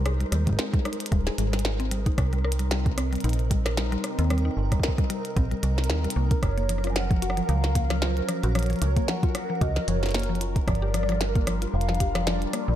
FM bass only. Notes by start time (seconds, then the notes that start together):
Already playing: C2
0.32 D#2
1.12 D#1
1.38 G#1
2.18 C2
3.24 A#1
4.19 D#2
4.57 G1
5.37 A#1
5.63 C2
5.90 D#2
6.16 C2
6.43 F#1
7.49 C#2
8.44 A#1
8.82 C#2
9.61 C#2
9.88 F#1
10.68 G1
11.74 F1
12.68 A#1